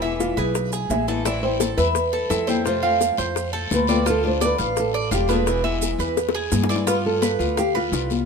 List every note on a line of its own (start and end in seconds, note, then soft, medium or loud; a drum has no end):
0.00 0.32 E1 medium
0.00 0.54 G#3 medium
0.00 0.54 B3 medium
0.00 0.19 E4 medium
0.00 0.55 E4 medium
0.00 0.36 E5 medium
0.00 high conga soft
0.05 0.55 E3 medium
0.20 0.38 F4 medium
0.20 high bongo medium
0.20 high conga medium
0.20 maracas medium
0.37 0.86 B1 medium
0.37 0.92 G#4 medium
0.37 0.71 B4 medium
0.37 high bongo soft
0.37 high conga soft
0.37 maracas soft
0.55 muted nylon-string guitar stroke medium
0.55 high bongo medium
0.55 high conga soft
0.55 maracas medium
0.72 1.07 G#4 medium
0.72 high bongo soft
0.72 high conga soft
0.72 maracas medium
0.90 1.72 A1 medium
0.90 1.08 E3 soft
0.90 1.08 G#3 soft
0.90 1.08 B3 soft
0.90 1.07 E4 soft
0.90 1.26 E5 loud
0.90 high bongo soft
0.90 low bongo medium
0.90 high conga medium
0.90 maracas medium
1.08 1.24 E3 medium
1.08 1.25 G#3 medium
1.08 1.25 B3 medium
1.08 1.25 E4 medium
1.08 1.25 A4 medium
1.08 high bongo soft
1.08 high conga medium
1.08 maracas soft
1.25 1.42 E3 medium
1.25 1.43 G3 medium
1.25 1.43 C4 medium
1.25 1.59 E4 medium
1.25 1.42 E4 medium
1.25 1.42 D5 medium
1.25 high bongo medium
1.25 high conga soft
1.25 long guiro medium
1.25 maracas medium
1.43 1.94 G3 medium
1.43 1.95 C4 medium
1.43 1.95 E4 medium
1.43 1.76 C5 medium
1.43 high conga soft
1.60 1.78 A4 medium
1.60 high bongo medium
1.60 high conga medium
1.60 short guiro medium
1.60 maracas medium
1.77 2.27 E2 medium
1.77 2.30 B4 medium
1.77 2.12 E5 medium
1.77 high bongo soft
1.77 high conga soft
1.77 short guiro medium
1.77 maracas soft
1.95 muted nylon-string guitar stroke medium
1.95 high bongo medium
1.95 high conga soft
1.95 long guiro medium
1.95 maracas medium
2.13 2.30 A4 medium
2.13 high bongo soft
2.13 high conga soft
2.30 3.12 F2 medium
2.30 2.47 E3 soft
2.30 2.48 G3 soft
2.30 2.48 C4 soft
2.30 2.47 E4 medium
2.30 2.66 A4 medium
2.30 2.47 E5 medium
2.30 high bongo soft
2.30 low bongo medium
2.30 high conga soft
2.30 short guiro medium
2.30 maracas medium
2.47 2.66 G3 medium
2.47 2.65 C4 medium
2.47 2.65 E4 medium
2.47 2.82 C5 medium
2.47 high bongo soft
2.47 high conga medium
2.47 short guiro medium
2.47 maracas soft
2.65 2.82 C3 medium
2.65 2.83 F3 medium
2.65 2.83 A3 medium
2.65 2.82 C4 medium
2.65 2.82 F4 medium
2.65 3.15 C5 medium
2.65 high bongo medium
2.65 long guiro medium
2.65 maracas medium
2.83 3.36 F3 medium
2.83 3.36 A3 medium
2.83 3.36 C4 medium
2.83 3.37 F4 medium
2.83 3.17 F5 medium
2.83 high conga soft
3.00 high bongo medium
3.00 high conga medium
3.00 short guiro medium
3.00 maracas medium
3.17 3.67 F2 medium
3.17 3.53 C5 medium
3.17 high bongo soft
3.17 high conga soft
3.17 short guiro medium
3.17 maracas soft
3.35 muted nylon-string guitar stroke medium
3.35 high bongo medium
3.35 high conga soft
3.35 long guiro medium
3.35 maracas medium
3.53 3.87 A4 medium
3.53 high bongo soft
3.53 high conga soft
3.70 4.53 D2 medium
3.70 3.88 F3 soft
3.70 3.89 A3 soft
3.70 3.88 C4 soft
3.70 3.87 F4 medium
3.70 4.05 B4 medium
3.70 high bongo soft
3.70 low bongo medium
3.70 high conga medium
3.70 short guiro medium
3.70 maracas medium
3.87 4.05 F3 medium
3.87 4.05 A3 medium
3.87 4.06 C4 medium
3.87 4.06 F4 medium
3.87 4.06 D5 medium
3.87 high bongo soft
3.87 high conga medium
3.87 short guiro medium
3.87 maracas soft
4.05 4.23 D3 medium
4.05 4.23 A3 medium
4.05 4.23 D4 medium
4.05 4.40 F4 medium
4.05 4.22 F4 medium
4.05 high bongo medium
4.05 high conga soft
4.05 long guiro medium
4.05 maracas medium
4.10 4.25 A4 medium
4.23 4.76 A3 medium
4.23 4.76 D4 medium
4.23 4.76 F4 medium
4.23 4.44 C5 medium
4.23 high conga soft
4.40 4.58 D5 medium
4.40 high bongo medium
4.40 high conga medium
4.40 short guiro medium
4.40 maracas medium
4.45 4.76 B4 medium
4.58 5.08 A1 medium
4.58 4.93 F5 medium
4.58 high bongo soft
4.58 high conga soft
4.58 short guiro medium
4.58 maracas soft
4.76 5.14 A4 medium
4.76 muted nylon-string guitar stroke medium
4.76 high bongo medium
4.76 high conga soft
4.76 long guiro medium
4.76 maracas medium
4.94 5.11 D5 medium
4.94 high bongo soft
4.94 high conga soft
5.11 5.94 E1 medium
5.11 5.28 D3 soft
5.11 5.29 A3 soft
5.11 5.28 D4 soft
5.11 5.28 F4 medium
5.11 5.31 G4 medium
5.11 5.29 F5 medium
5.11 high bongo soft
5.11 low bongo medium
5.11 high conga soft
5.11 short guiro medium
5.11 maracas medium
5.28 5.46 A3 medium
5.28 5.46 D4 medium
5.28 5.46 F4 medium
5.28 6.53 G#4 medium
5.28 5.63 B4 medium
5.28 high bongo soft
5.28 high conga medium
5.28 short guiro medium
5.28 maracas soft
5.46 5.63 B2 medium
5.46 5.64 E3 medium
5.46 5.64 G#3 medium
5.46 5.63 B3 medium
5.46 5.63 E4 medium
5.46 high bongo medium
5.46 long guiro medium
5.46 maracas medium
5.64 6.16 E3 medium
5.64 6.17 G#3 medium
5.64 6.17 B3 medium
5.64 6.16 E4 medium
5.64 5.98 E5 medium
5.64 high conga soft
5.81 high bongo medium
5.81 high conga medium
5.81 short guiro medium
5.81 maracas medium
5.98 6.48 E2 medium
5.98 6.34 B4 medium
5.98 high bongo soft
5.98 high conga soft
5.98 short guiro medium
5.98 maracas soft
6.17 muted nylon-string guitar stroke medium
6.17 high bongo medium
6.17 high conga soft
6.17 long guiro medium
6.17 maracas medium
6.29 high bongo medium
6.35 6.69 G#4 medium
6.35 high conga soft
6.52 7.34 G2 medium
6.52 6.69 E3 soft
6.52 6.69 G#3 medium
6.52 6.69 B3 medium
6.52 6.68 E4 soft
6.52 low bongo medium
6.52 high conga medium
6.52 short guiro medium
6.52 maracas medium
6.63 low bongo medium
6.69 6.87 E3 medium
6.69 6.86 G#3 medium
6.69 6.86 B3 medium
6.69 6.87 E4 medium
6.69 6.87 D5 medium
6.69 short guiro medium
6.69 maracas soft
6.76 low bongo medium
6.87 7.42 G3 medium
6.87 7.40 B3 medium
6.87 7.21 F4 medium
6.87 7.38 F4 medium
6.87 6.92 B4 medium
6.87 high bongo medium
6.87 long guiro medium
6.87 maracas medium
7.05 7.41 A4 medium
7.05 high conga soft
7.22 7.56 B4 medium
7.22 high bongo medium
7.22 high conga medium
7.22 short guiro medium
7.22 maracas medium
7.39 7.89 D2 medium
7.39 7.57 B3 medium
7.39 7.56 F4 medium
7.39 high bongo soft
7.39 high conga soft
7.39 short guiro medium
7.39 maracas soft
7.57 7.76 G4 medium
7.57 7.75 F5 medium
7.57 muted nylon-string guitar stroke medium
7.57 high bongo medium
7.57 high conga soft
7.57 long guiro medium
7.57 maracas medium
7.75 8.25 F4 medium
7.75 8.09 B4 medium
7.75 high bongo soft
7.75 high conga soft
7.92 8.25 C2 medium
7.92 8.25 G3 soft
7.92 8.25 B3 soft
7.92 8.25 F4 medium
7.92 high bongo soft
7.92 low bongo medium
7.92 high conga soft
7.92 short guiro medium
7.92 maracas medium
8.10 high bongo soft
8.10 high conga medium
8.10 short guiro medium
8.10 maracas soft